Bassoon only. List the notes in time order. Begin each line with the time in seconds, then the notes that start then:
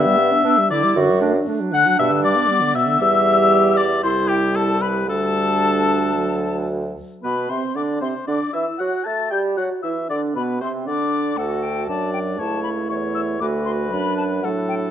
Already playing: G2
0.96 F#2
1.99 G2
3.02 E2
4.04 C2
5.09 D2
7.24 B2
7.50 C3
7.76 D3
8.02 C3
8.28 D3
8.54 E3
8.80 F#3
9.06 A3
9.32 G3
9.58 F#3
9.84 E3
10.10 D3
10.36 B2
10.62 C3
10.87 D3
11.38 D2
11.89 F#2
12.40 C#2
12.90 E2
13.41 D2
13.93 F#2
14.44 A2